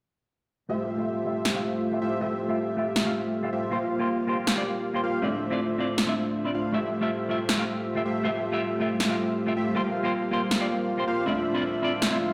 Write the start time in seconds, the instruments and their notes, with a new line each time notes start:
0.69 clean electric guitar A3 F4 G4 E5, analog polysynth A3 F4 G4 C5 E5
0.97 clean electric guitar A3 F4 G4 E5
1.25 clean electric guitar A3 F4 G4 E5
1.45 snare
1.54 clean electric guitar A3 F4 G4 F5
1.92 clean electric guitar A3 F4 G4 E5
2.02 analog polysynth A3 F4 G4 C5 E5
2.20 clean electric guitar A3 F4 G4 E5, analog polysynth A3 F4 G4 C5 E5
2.48 clean electric guitar A3 F4 G4 E5
2.77 clean electric guitar A3 F4 G4 E5
2.96 snare
3.05 clean electric guitar A3 F4 G4 F5
3.43 clean electric guitar A3 F4 G4 E5
3.53 analog polysynth A3 F4 G4 C5 E5
3.71 clean electric guitar A#3 F4 G4 C5, analog polysynth A#3 F4 G4 C5 F5
3.99 clean electric guitar A#3 F4 G4 C5
4.27 clean electric guitar A#3 F4 G4 C5
4.47 snare
4.56 clean electric guitar A#3 F4 G4 D5
4.94 clean electric guitar A#3 F4 G4 C5
5.04 analog polysynth A#3 F4 G4 C5 F5
5.22 analog polysynth A3 D4 F4 C5 E5, clean electric guitar C4 E4 F4 D5
5.50 clean electric guitar C4 E4 F4 D5
5.78 clean electric guitar C4 E4 F4 D5
5.98 snare
6.07 clean electric guitar C4 E4 F4 E5
6.45 clean electric guitar C4 E4 F4 D5
6.54 analog polysynth A3 D4 F4 C5 F5
6.72 ambient pad G3 F4 A4 E5, clean electric guitar A3 F4 G4 E5, analog polysynth A3 F4 G4 C5 E5
7.01 clean electric guitar A3 F4 G4 E5
7.29 clean electric guitar A3 F4 G4 E5
7.49 snare
7.57 clean electric guitar A3 F4 G4 F5
7.95 clean electric guitar A3 F4 G4 E5
8.05 analog polysynth A3 F4 G4 C5 E5
8.23 clean electric guitar A3 F4 G4 E5, analog polysynth A3 F4 G4 C5 E5
8.52 clean electric guitar A3 F4 G4 E5
8.80 clean electric guitar A3 F4 G4 E5
9.00 snare
9.09 clean electric guitar A3 F4 G4 F5
9.46 clean electric guitar A3 F4 G4 E5
9.57 analog polysynth A3 F4 G4 C5 E5
9.75 clean electric guitar A#3 F4 G4 C5, analog polysynth A#3 F4 G4 C5 F5, ambient pad C4 A#4 F5
10.03 clean electric guitar A#3 F4 G4 C5
10.31 clean electric guitar A#3 F4 G4 C5
10.51 snare
10.60 clean electric guitar A#3 F4 G4 D5
10.97 clean electric guitar A#3 F4 G4 C5
11.07 analog polysynth A#3 F4 G4 C5 F5
11.26 ambient pad F3 D4 C5 E5, analog polysynth A3 D4 F4 C5 E5, clean electric guitar C4 E4 F4 D5
11.54 clean electric guitar C4 E4 F4 D5
11.82 clean electric guitar C4 E4 F4 D5
12.02 snare, swell
12.11 clean electric guitar C4 E4 F4 E5